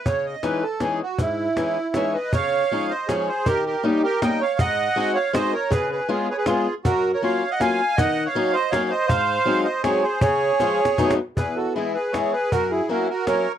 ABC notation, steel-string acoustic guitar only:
X:1
M:3/4
L:1/8
Q:1/4=160
K:C#m
V:1 name="Steel-string acoustic guitar"
C,2 [E,G,CD] z [E,G,CD] z | G,,2 [E,G,CD] z [E,G,CD] z | [K:Db] D,2 [F,A,DE] z [F,A,DE] z | E,2 [=G,B,DE] z [G,B,DE] z |
A,,2 [A,CEG] z [A,CEG] z | D,2 [A,_CDF] z [A,CDF] z | G,,2 [G,B,DF] z [G,B,DF] z | E,2 [G,B,DE] z [G,B,DE] z |
A,,2 [G,A,CE] z [G,A,CE] z | D,2 [F,A,DF] z [G,=A,_CE] z | [K:E] E,,2 [E,G,B,E] z [E,G,B,E] z | F,,2 [F,^A,CE] z [F,A,CE] z |]